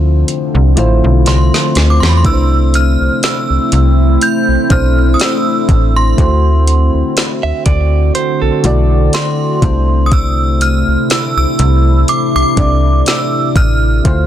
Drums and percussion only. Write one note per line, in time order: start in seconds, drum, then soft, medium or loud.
0.28 closed hi-hat medium
0.77 closed hi-hat medium
1.26 snare medium
1.26 closed hi-hat medium
1.54 snare medium
1.75 snare medium
1.75 closed hi-hat medium
2.03 snare loud
2.25 kick loud
2.25 closed hi-hat medium
2.74 closed hi-hat medium
3.23 snare loud
3.23 closed hi-hat medium
3.72 closed hi-hat medium
4.21 closed hi-hat medium
4.70 kick medium
4.70 closed hi-hat medium
5.20 snare loud
5.20 closed hi-hat medium
5.69 kick loud
5.69 closed hi-hat medium
6.18 kick loud
6.18 closed hi-hat medium
6.67 closed hi-hat medium
7.17 snare loud
7.17 closed hi-hat medium
7.66 kick medium
7.66 closed hi-hat medium
8.15 closed hi-hat medium
8.64 closed hi-hat medium
9.13 snare loud
9.13 closed hi-hat medium
9.62 kick loud
9.62 closed hi-hat medium
10.12 kick loud
10.12 closed hi-hat medium
10.61 closed hi-hat medium
11.10 snare loud
11.10 closed hi-hat medium
11.59 closed hi-hat medium
12.08 closed hi-hat medium
12.57 kick medium
12.57 closed hi-hat medium
13.06 snare loud
13.06 closed hi-hat medium
13.56 kick loud
13.56 closed hi-hat medium
14.05 kick loud
14.05 closed hi-hat medium